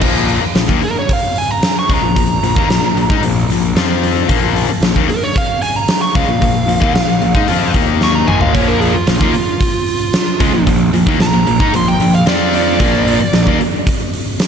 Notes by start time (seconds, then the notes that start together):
0.01 A#1 A#2 F3 A#3, kick, crash
0.28 open hi-hat
0.42 muted distorted electric guitar stroke, muted picked electric bass stroke
0.55 A#1 A#2 F3, snare, open hi-hat
0.68 D#2 D#3 A#3, kick
0.82 A#4, muted picked electric bass stroke, muted distorted electric guitar stroke, open hi-hat
0.99 C#5
1.09 F5, kick, open hi-hat
1.36 G#5, open hi-hat
1.51 A#5
1.63 snare, open hi-hat
1.79 C#6
1.89 C#2 C#3 G#3, kick, open hi-hat
1.94 A#5
2.02 A#1 A#2 F3
2.16 A#1 A#2 F3, kick, open hi-hat
2.42 A#1 A#2 F3, open hi-hat
2.56 D#2 D#3 A#3, kick
2.69 A#1 A#2 F3, snare, open hi-hat
2.82 A#1 A#2 F3
2.95 A#1 A#2 F3, open hi-hat
3.10 G#2 G#3 D#4, kick
3.22 A#1 A#2 F3, open hi-hat
3.49 A#1 A#2 F3, open hi-hat
3.75 F2 F3 C4 F4, snare, open hi-hat
4.03 open hi-hat
4.29 A#1 A#2 F3 A#3, kick, open hi-hat
4.56 open hi-hat
4.68 muted picked electric bass stroke, muted distorted electric guitar stroke
4.81 A#1 A#2 F3, snare, open hi-hat
4.96 D#2 D#3 A#3, kick
5.09 A#4, muted picked electric bass stroke, muted distorted electric guitar stroke, open hi-hat
5.23 C#5
5.36 F5, kick, open hi-hat
5.62 G#5, open hi-hat
5.76 A#5
5.88 snare, open hi-hat
6.02 C#6
6.15 C#2 C#3 G#3 F5, kick, open hi-hat
6.27 A#1 A#2 F3
6.41 A#1 A#2 F3, kick, open hi-hat
6.67 A#1 A#2 F3, open hi-hat
6.80 D#2 D#3 A#3, kick
6.94 A#1 A#2 F3, snare, open hi-hat
7.08 A#1 A#2 F3
7.22 A#1 A#2 F3, open hi-hat
7.34 G#2 G#3 D#4, kick
7.48 F2 F3 C4 F4, open hi-hat
7.74 D#2 D#3 A#3 D#4, kick, open hi-hat
8.01 C#6, snare
8.15 A#5
8.27 G#1 G#2 D#3 G#3 G#5, mid tom
8.41 F5, floor tom
8.54 A#1 A#2 F3 A#3 C#5, kick, open hi-hat
8.68 A#4
8.80 G#4, open hi-hat
8.94 F4, muted distorted electric guitar stroke, muted overdriven electric guitar stroke, muted picked electric bass stroke
9.07 A#1 A#2 F3 F4, snare, open hi-hat
9.21 D#2 D#3 A#3, kick
9.34 muted overdriven electric guitar stroke, muted distorted electric guitar stroke, muted picked electric bass stroke, open hi-hat
9.61 kick, open hi-hat
9.86 open hi-hat
10.13 snare, open hi-hat
10.40 C#2 C#3 G#3, kick, open hi-hat
10.53 A#1 A#2 F3
10.66 A#1 A#2 F3, kick, open hi-hat
10.94 A#1 A#2 F3, open hi-hat
11.07 D#2 D#3 A#3, kick
11.20 A#1 A#2 F3 A#5, snare, open hi-hat
11.34 A#1 A#2 F3
11.46 A#1 A#2 F3, open hi-hat
11.60 G#2 G#3 D#4, kick
11.73 A#1 A#2 F3 C6, open hi-hat
11.88 G5
12.00 A#1 A#2 F3, open hi-hat
12.15 F5
12.26 F2 F3 C4 F4 D5, snare, open hi-hat
12.53 D5, open hi-hat
12.80 A#1 A#2 F3 A#3, kick, open hi-hat
13.08 open hi-hat
13.20 muted overdriven electric guitar stroke, muted picked electric bass stroke, muted distorted electric guitar stroke
13.33 A#1 A#2 F3, snare, open hi-hat
13.47 D#2 D#3 A#3, kick
13.60 muted picked electric bass stroke, muted overdriven electric guitar stroke, muted distorted electric guitar stroke, open hi-hat
13.87 kick, open hi-hat
14.13 open hi-hat
14.40 snare, open hi-hat